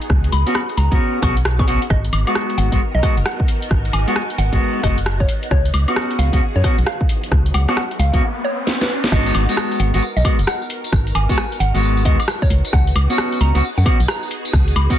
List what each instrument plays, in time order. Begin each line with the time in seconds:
Already playing: string machine B3 D#4 F#4 G#4
0.02 closed hi-hat
0.10 fm bass C#2, kick, cross-stick
0.24 closed hi-hat
0.32 fm bass C#2, synth pluck B5, open hi-hat
0.46 clean electric guitar B3 C#4 F#4, closed hi-hat
0.55 synth pluck B5, cross-stick
0.69 closed hi-hat
0.77 fm bass C#2, synth pluck A#5, open hi-hat
0.91 fm bass C#2, clean electric guitar B3 C#4 F#4, kick, closed hi-hat
1.22 fm bass B1, clean electric guitar B3 C#4 F#4, synth pluck C#6, kick, cross-stick, open hi-hat
1.37 closed hi-hat
1.45 cross-stick
1.59 clean electric guitar B3 C#4 G#4, synth pluck C#6, kick
1.67 clean electric guitar B3 C#4 F#4, open hi-hat
1.82 closed hi-hat
1.90 fm bass G#1, string machine B3 D#4 F#4 A#4, synth pluck D#5, kick, cross-stick
2.05 closed hi-hat
2.13 fm bass G#1, open hi-hat, high woodblock
2.27 clean electric guitar G#3 B3 F#4, closed hi-hat, high woodblock
2.35 cross-stick
2.50 closed hi-hat
2.58 fm bass G#1, synth pluck F#5, open hi-hat
2.72 fm bass G#1, clean electric guitar G#3 B3 F#4, kick, closed hi-hat
2.95 fm bass B1, synth pluck D#5
3.03 clean electric guitar G#3 B3 F#4, kick, cross-stick, open hi-hat
3.17 fm bass F#1, closed hi-hat
3.26 synth pluck F#5, cross-stick
3.40 kick
3.48 open hi-hat
3.62 closed hi-hat
3.71 fm bass G#1, kick, cross-stick
3.85 closed hi-hat
3.93 fm bass G#1, synth pluck G#5, open hi-hat, high woodblock
4.07 clean electric guitar G#3 B3 F#4, closed hi-hat
4.16 synth pluck G#5, cross-stick
4.30 closed hi-hat
4.38 fm bass G#1, synth pluck F#5, open hi-hat
4.52 fm bass G#1, clean electric guitar G#3 B3 F#4, kick, closed hi-hat
4.83 fm bass F#1, clean electric guitar G#3 B3 F#4, synth pluck D#5, kick, cross-stick, open hi-hat
4.98 closed hi-hat
5.06 cross-stick
5.20 synth pluck C#5, kick
5.29 string machine F#4 G#4, open hi-hat
5.43 closed hi-hat
5.51 fm bass C#2, synth pluck C#5, kick, cross-stick, riser
5.65 closed hi-hat
5.74 fm bass C#2, open hi-hat, high woodblock
5.88 clean electric guitar B3 C#4 F#4, closed hi-hat, high woodblock
5.96 cross-stick
6.11 closed hi-hat
6.19 fm bass C#2, synth pluck F5, open hi-hat
6.33 fm bass C#2, clean electric guitar B3 C#4 F#4, kick, closed hi-hat
6.56 fm bass F#2, synth pluck C#5
6.64 clean electric guitar B3 C#4 F#4, kick, cross-stick, open hi-hat
6.78 fm bass B1, closed hi-hat
6.86 synth pluck F5, cross-stick
7.01 kick
7.09 open hi-hat
7.24 closed hi-hat
7.32 fm bass C#2, kick, cross-stick
7.46 closed hi-hat
7.54 fm bass C#2, synth pluck F#5, open hi-hat, high woodblock
7.68 clean electric guitar B3 C#4 F#4, cross-stick, closed hi-hat, high woodblock
7.77 synth pluck F#5, cross-stick
7.91 closed hi-hat
7.99 fm bass C#2, synth pluck F5, open hi-hat
8.13 fm bass C#2, clean electric guitar B3 C#4 F#4, kick, closed hi-hat
8.44 synth pluck C#5
8.67 snare
8.81 synth pluck B4, snare
9.04 snare
9.12 fm bass G#1, clean electric guitar G#3 B3 F#4, string machine B3 D#4 F#4 A#4, synth pluck D#5, kick, cross-stick, crash, tambourine
9.26 closed hi-hat, tambourine
9.35 fm bass G#1, open hi-hat, high woodblock
9.49 clean electric guitar G#3 B3 F#4, closed hi-hat, tambourine
9.57 cross-stick
9.71 closed hi-hat, tambourine
9.80 fm bass G#1, synth pluck F#5, open hi-hat
9.94 fm bass G#1, clean electric guitar G#3 B3 F#4, closed hi-hat, tambourine
10.02 tambourine
10.17 fm bass B1, synth pluck D#5, tambourine
10.24 clean electric guitar G#3 B3 F#4, kick, open hi-hat, high woodblock
10.39 fm bass F#1, closed hi-hat, tambourine
10.47 synth pluck F#5, cross-stick, tambourine
10.62 tambourine
10.70 open hi-hat
10.84 closed hi-hat, tambourine
10.92 fm bass G#1, kick, cross-stick, tambourine
11.07 closed hi-hat, tambourine
11.15 fm bass G#1, synth pluck G#5, open hi-hat, high woodblock
11.29 clean electric guitar G#3 B3 F#4, kick, closed hi-hat, tambourine
11.38 synth pluck G#5, cross-stick
11.52 closed hi-hat, tambourine
11.60 fm bass G#1, synth pluck F#5, open hi-hat
11.74 fm bass G#1, clean electric guitar G#3 B3 F#4, closed hi-hat, tambourine
11.83 tambourine
11.97 tambourine
12.05 fm bass D#2, clean electric guitar G#3 B3 F#4, synth pluck D#5, kick, open hi-hat
12.20 closed hi-hat, tambourine, high woodblock
12.28 cross-stick, tambourine
12.42 synth pluck C#5, kick, tambourine
12.50 fm bass C#2, string machine G#4, open hi-hat
12.65 closed hi-hat, tambourine
12.73 fm bass C#2, synth pluck F#5, kick, cross-stick
12.87 closed hi-hat, tambourine
12.95 fm bass C#2, open hi-hat, high woodblock
13.09 clean electric guitar B3 C#4 F#4, closed hi-hat, tambourine
13.18 cross-stick
13.32 closed hi-hat, tambourine
13.41 fm bass C#2, synth pluck A#5, open hi-hat
13.54 fm bass C#2, clean electric guitar B3 C#4 F#4, closed hi-hat, tambourine
13.63 tambourine
13.78 fm bass F#2, synth pluck F#5, tambourine
13.85 clean electric guitar B3 C#4 F#4, kick, open hi-hat, high woodblock
14.00 fm bass B1, closed hi-hat, tambourine
14.08 synth pluck A#5, cross-stick, tambourine
14.23 tambourine
14.31 open hi-hat
14.45 closed hi-hat, tambourine
14.53 fm bass C#2, kick, cross-stick
14.68 closed hi-hat, tambourine
14.76 fm bass C#2, synth pluck B5, open hi-hat, high woodblock
14.90 clean electric guitar B3 C#4 F#4, kick, closed hi-hat, tambourine